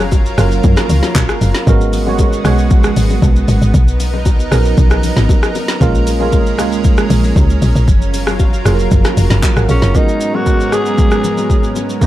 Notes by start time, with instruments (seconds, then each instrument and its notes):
Already playing: log drum bass F#1, analog synth pad F#3 C#4 F4 A#4
0.00 low bongo, shaker
0.12 kick, high bongo, shaker
0.26 shaker
0.37 log drum bass F#1, tine electric piano F#3 A#3 C#4 F4 A#4, cross-stick, open hi-hat, shaker
0.51 shaker
0.64 log drum bass F#2, kick, low conga, shaker
0.77 cross-stick, snare, shaker
0.90 log drum bass C#2, open hi-hat, low conga, shaker
1.03 snare, low bongo, shaker
1.15 log drum bass A#1, kick, clap, high bongo, shaker
1.29 cross-stick, shaker
1.41 log drum bass F#1, open hi-hat, high bongo, low bongo, shaker
1.55 snare, shaker
1.66 log drum bass G#1, tine electric piano G#3 B3 C#4 F#4 A#4, analog synth pad G#3 B3 F#4, kick, low conga, shaker
1.81 shaker
1.93 open hi-hat, low bongo, shaker
2.06 tine electric piano G#3 B3 C#4 F#4 C#5, low bongo
2.19 kick, high bongo, shaker
2.33 shaker
2.44 log drum bass B1, tine electric piano G#3 B3 C#4 F#4 C#5, cross-stick, open hi-hat, shaker
2.58 shaker
2.70 kick, low conga, shaker
2.84 cross-stick, shaker
2.96 log drum bass G#1, open hi-hat, low conga, shaker
3.10 low bongo, shaker
3.22 log drum bass B1, kick, high bongo, shaker
3.36 shaker
3.48 log drum bass G#1, open hi-hat, high bongo, low bongo, shaker
3.62 log drum bass G#1, shaker
3.74 log drum bass B1, analog synth pad D#4 A#4, kick, low conga, shaker
3.88 shaker
4.00 open hi-hat, low bongo, shaker
4.14 low bongo
4.26 kick, high bongo, shaker
4.40 shaker
4.51 log drum bass A#1, tine electric piano F#3 B3 C#4 D#4 A#4, cross-stick, open hi-hat, shaker
4.65 shaker
4.77 log drum bass B1, kick, low conga, shaker
4.90 cross-stick, shaker
5.03 open hi-hat, low conga, shaker
5.17 log drum bass G#1, snare, low bongo, shaker
5.29 kick, high bongo, shaker
5.43 cross-stick, shaker
5.55 open hi-hat, high bongo, low bongo, shaker
5.68 snare, shaker
5.80 log drum bass A#1, tine electric piano G#3 A#3 C#4 F4 A#4, analog synth pad G#3 C#4, kick, low conga, shaker
5.95 shaker
6.07 open hi-hat, low bongo, shaker
6.20 tine electric piano G#3 A#3 C#4 F4 A#4, low bongo
6.32 kick, high bongo, shaker
6.47 shaker
6.58 log drum bass C#2, tine electric piano G#3 A#3 C#4 F4 G#4, cross-stick, open hi-hat, shaker
6.72 shaker
6.84 kick, low conga, shaker
6.97 cross-stick, shaker
7.10 log drum bass A#1, open hi-hat, low conga, shaker
7.24 low bongo, shaker
7.36 log drum bass C#2, kick, high bongo, shaker
7.50 shaker
7.62 log drum bass A#1, open hi-hat, high bongo, low bongo, shaker
7.75 log drum bass A#1, shaker
7.88 log drum bass F#1, analog synth pad F#3 F4 A#4, kick, low conga, shaker
8.02 shaker
8.14 open hi-hat, low bongo, shaker
8.27 cross-stick, low bongo, shaker
8.39 kick, high bongo, shaker
8.53 shaker
8.65 log drum bass F1, tine electric piano F#3 A#3 C#4 F4 G#4, cross-stick, open hi-hat, shaker
8.74 tine electric piano A#4
8.79 shaker
8.91 log drum bass F#1, kick, low conga, shaker
9.04 cross-stick, snare, shaker
9.17 log drum bass F1, open hi-hat, low conga, shaker
9.30 log drum bass F#1, snare, low bongo, shaker
9.43 kick, clap, high bongo, shaker
9.57 log drum bass G#1, tine electric piano A#4 F#5, cross-stick, shaker
9.69 log drum bass A#1, alto saxophone C#4, tine electric piano G#4 F5, open hi-hat, high bongo, low bongo, shaker
9.82 log drum bass F#1, tine electric piano F4 C#5, snare, shaker
9.94 analog synth pad G#2 F#3 B3 C#4 A#4, tine electric piano G#3 B3 C#4 F#4 A#4, alto saxophone D#4, kick, low conga, shaker
10.09 shaker
10.21 shaker
10.33 tine electric piano G#3 B3 C#4 F#4 G#4, alto saxophone F#4, low bongo
10.46 kick, high bongo, shaker
10.60 shaker
10.72 tine electric piano G#3 B3 C#4 F#4 C#5, alto saxophone G#4, cross-stick, shaker
10.86 shaker
10.98 kick, low conga, shaker
11.11 cross-stick, shaker
11.24 low conga, shaker
11.38 low bongo, shaker
11.50 kick, high bongo, shaker
11.63 shaker
11.76 high bongo, low bongo, shaker
11.89 shaker
12.01 analog synth pad B2 D#4 A#4, tine electric piano C#3 A#3 B3, kick, low conga, shaker